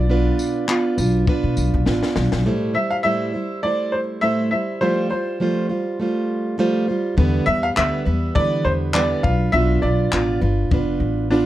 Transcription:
Already playing: B1 D5
0.09 B3 D4 F4 B4
0.39 tambourine
0.68 B3 D4 F4 B4, clap
0.98 B1 D4 F4 B4, tambourine
1.27 B3 D4 F4 B4, kick
1.43 B2
1.57 B1, tambourine
1.74 B1
1.86 A1 B3 D4 F4 B4, snare
2.03 snare
2.16 B1, snare
2.32 B1, snare
2.45 A2 G3 A3 E4 C5
2.74 G3 E4 C5 E5
2.90 F5
3.03 A2 G3 A3 E4 C5 E5
3.33 G3 E4 C5
3.63 G3 A3 E4 C5 D5
3.92 C5
4.21 A2 G3 A3 E4 C5 E5
4.51 G3 E4 C5 E5
4.81 F3 G3 A3 F4 C5
5.10 G3 F4 C5
5.40 F3 G3 A3 F4 C5
5.69 G3 F4 C5
6.00 G3 A3 F4 C5
6.58 F3 G3 A3 F4 C5
6.88 G3 F4 C5
7.17 E2 D3 E3 G3 B3 B4, kick
7.46 E2 G3 B3 B4 E5
7.63 F5
7.76 D2 D3 E3 G3 B3 B4 E5, clap
8.05 E2 G3 B3 B4
8.35 D3 E3 G3 B3 B4 D5, kick
8.65 E2 C5
8.94 D3 E3 G3 B3 B4 D5, clap
9.23 B1 D4 F4 B4 F5, kick
9.52 B1 B3 D4 F4 B4 E5
9.82 B1 D4 F4 B4 D5
10.12 A1 B3 D4 F4 B4, clap
10.41 G1 D4 F4 B4
10.71 F1 B3 D4 F4 B4, kick
11.00 A1
11.30 B3 D4 F4 B4

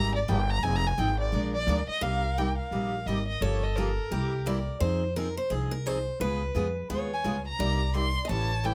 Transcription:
Already playing: G#1 C3 G3 A#3 D#4 G4 A#5
0.16 D5
0.28 G1 C3 G3 A#3 D#4 G4 G5
0.50 A#5
0.63 F1 F3 C4 D#4 G#4 G#5
0.76 A#5
0.87 G#5
0.97 G#1 F3 C4 D#4 G#4 G5
1.20 D5
1.32 A#1 F3 G#3 D4 F4 A#4
1.54 D5
1.67 D2 F3 G#3 D4 F4 A#4
1.87 D#5, muted upright bass stroke
2.01 C2 C3 G3 A#3 D#4 G4 A#4 F5
2.38 C3 G3 A#3 D#4 G4 G5
2.58 F5
2.71 A#1 C3 G3 A#3 D#4 G4
3.06 G#1 C3 G3 A#3 D#4 G4 D#5
3.28 D#5
3.41 G1 C#3 F3 A#3 F4 G4 A4 C#5
3.63 D#5
3.76 C#3 F3 A#3 F4 G4 A#4
4.11 C2 C3 G3 A#3 E4 G4
4.46 C3 G3 A#3 E4 G4 D5
4.80 F2 F3 C4 D#4 G#4 C5
5.16 F3 C4 D#4 G#4 A#4
5.37 C5
5.50 C2 F3 C4 D#4 G#4
5.71 A#4
5.86 F3 C4 D#4 G#4 C5
6.20 C#2 C#3 G#3 B3 F4 G#4 B4
6.54 F2 C#3 G#3 B3 F4 G#4
6.89 D#2 C#3 G#3 B3 F4 G#4 C#5
7.14 G#5
7.24 C#2 C#3 G#3 B3 F4 G#4
7.48 A#5
7.59 C2 C3 G3 A#3 D#4 G4 D5
7.94 C3 G3 A#3 D#4 G4 C6
8.25 D#5
8.29 A1 C#3 E3 A3 C#4 G4 C#5 A5
8.64 C#3 E3 A3 C#4 G4 G5

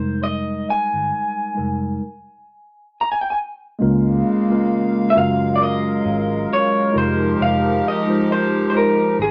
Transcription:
Already playing: F1 G3 G#3 D#4 A#4 C5
0.24 D#5
0.70 G#5
0.93 G1
1.54 G3 G#3 D#4 A#4
1.58 F1
3.01 A#5
3.12 G#5
3.21 G5
3.30 G#5
3.79 C#2 C#3 G#3 A#3 C#4 F4 A#4 F5
4.48 G#3 A#3 C#4 F4 A#4
5.10 F#3 G#3 C#4 A#4 E5
5.15 F#1 F4 F#4 A#4 F5
5.56 D5
5.63 D#5
6.05 G#1
6.53 C#5
6.92 F1 F3 G#3 D#4 F4 G4 A#4
6.98 C5
7.40 F1 F5
7.88 D#5
8.07 G#3 D#4 F4 G4 C5
8.32 C5
8.70 G#3 D#4 F4 C5
8.74 G4 A#4 C5
9.16 G#1 G#3 C4 F4
9.22 G#4

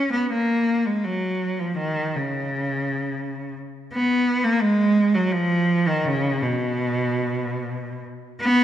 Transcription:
0.13 B3
0.31 A#3
0.85 G#3
1.04 F#3
1.59 F3
1.77 D#3
2.15 C#3
3.93 B3
4.44 A#3
4.61 G#3
5.14 F#3
5.31 F3
5.87 D#3
6.05 C#3
6.42 B2
8.40 B3

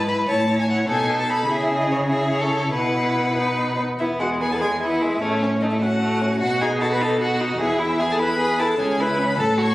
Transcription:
Already playing: G#2
0.08 E4 B4 B5
0.28 A2 E4 C#5 A5
0.48 E4 C#5
0.59 G#5
0.68 E4 C#5 F#5
0.89 B2 D#4 A4 G#5
1.09 D#4 A4
1.20 A5
1.29 D#4 A4 B5
1.48 C#3 E4 G#4 E5
1.81 D#5
1.91 C#5
2.10 E4 G#4 E5
2.31 C#5
2.41 A4
2.73 B2 E4 B4 F#5
3.37 D#4 B4
3.99 E2 B3 E4 E5
4.20 G#3 F#4 F#5
4.41 B3 G#4 G#5
4.52 A4 A5
4.61 G#3 G#4 G#5
4.81 B3 E4 E5
5.02 G#3
5.21 A2 A3 C#4 C#5
5.42 C#4 C#5
5.61 A3 D#4 D#5
5.70 E4 E5
5.80 C#4 F#4 F#5
6.02 A3
6.21 C#4
6.41 B2 F#4 F#5
6.61 D#4 G#4 G#5
6.80 F#4 A4 A5
6.92 B4 B5
7.01 D#4 A4 A5
7.21 F#4 F#5
7.40 D#4
7.60 E2 E4 G#4 E5
7.79 E4 E5
8.00 G#4 G#5
8.11 A4 A5
8.19 E4 B4 B5
8.39 G#4
8.59 E4 A4 A5
8.79 C#2 C#4 G#4 G#5
9.00 E4 B4 B5
9.19 C#4
9.38 A2 A4 A5
9.58 F#4 C#5 C#6

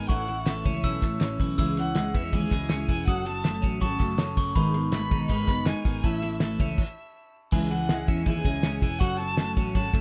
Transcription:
Already playing: B3 D#4 B5
0.08 A1 E3 A3 C#4 E4 A4 F#5 C#6, kick, hi-hat pedal, ride
0.26 E3 C#4 E4 A4, ride
0.46 A3 C#4 E4 A4 E5, snare, clap, ride
0.64 C#2 C#4 E4 A4, kick, ride
0.83 B1 E3 A3 C#4 E4 A4 E6, kick, ride
1.01 A1 A3 C#4 E4 A4, kick, clap, ride
1.21 A1 A3 C#4 E4 A4, snare, clap, ride
1.39 B1 E3 C#4 E4 A4, kick, open hi-hat, ride
1.58 C#2 C#3 E3 G#3 C#4 E4 G#4 E6, kick, hi-hat pedal, ride
1.77 E3 C#4 E4 G#4 F#5, ride
1.95 G#3 C#4 E4 G#4, snare, clap, ride
2.14 E2 B3 C#4 E4 G#4 E5, kick, ride
2.24 C#4
2.33 D#2 C#3 E3 G#3 C#4 E4 G#4 G#5, kick, ride
2.51 C#2 G#3 C#4 E4 G#4, kick, snare, clap, ride
2.69 C#2 G#3 C#4 E4, snare, clap, ride
2.73 G#4
2.89 E1 E3 C#4 E4 G#4 G#5, kick, open hi-hat, ride
3.07 F#1 F#3 C#4 F#4 A4 F#5 D#6, kick, hi-hat pedal, ride
3.25 F#3 C#4 F#4 A4 A5, ride
3.44 F#3 A3 C#4 F#4 A4, snare, clap, ride
3.62 A1 C#4 F#4 A4, kick, ride
3.66 C#4
3.81 G#1 F#3 C#4 F#4 A4 A5 C#6, kick, ride
4.00 F#1 A3 C#4 F#4 A4, kick, clap, ride
4.18 F#1 F#3 C#4 F#4 A4 A5, snare, clap, ride
4.36 F#1 F#3 C#4 F#4 A4 C#6, kick, open hi-hat, ride
4.55 G#1 G#2 D#3 G#3 B3 D#4 G#4 B5, kick, hi-hat pedal, ride
4.74 D#3 G#3 B3 D#4 G#4, ride
4.92 G#3 A3 B3 D#4 G#4 B5, snare, clap, ride
5.02 B3
5.11 B1 G#3 B3 D#4 G#4, kick, ride
5.29 G#1 G#2 D#3 G#3 B3 D#4 G#4 B5, kick, ride
5.48 F#1 G#3 B3 D#4 G#4, kick, snare, clap, ride
5.66 G#3 B3 D#4 G#4 G#5, snare, clap, ride
5.84 G#1 D#3 G#3 B3 D#4 G#4, kick, open hi-hat, ride
6.03 A1 A2 E3 A3 C#4 E4 A4 E5 A5, kick, hi-hat pedal, ride
6.22 E3 A3 C#4 E4 A4, ride
6.40 A3 C#4 E4 A4 E5, snare, clap, ride
6.59 C#2 A3 C#4 E4 A4, kick, ride
6.78 kick, crash
7.52 C#2 C#3 E3 G#3 C#4 E4 G#4 G#5, kick, crash
7.70 E3 C#4 E4 G#4 F#5, ride
7.88 G#3 C#4 E4 G#4, snare, ride
8.07 E2 C#4 E4 G#4 E5, kick, ride
8.25 D#2 C#3 E3 G#3 C#4 E4 G#4 G#5, kick, ride
8.44 C#2 G#3 C#4 E4 G#4, kick, snare, ride
8.63 C#2 G#3 C#4 E4 G#4, snare, ride
8.81 E1 E3 C#4 E4 G#4 G#5, kick, open hi-hat, ride
8.99 F#1 F#3 C#4 F#4 A4 F#5 C#6, kick, hi-hat pedal, ride
9.17 F#3 F#4 A4 A5, ride
9.22 C#4
9.37 F#3 A3 C#4 F#4 A4, snare, ride
9.55 A1 C#4 F#4 A4, kick, ride
9.74 G#1 F#3 C#4 F#4 A4 A5, kick, ride
9.93 F#1 A3 C#4 F#4 A4, kick, snare, ride

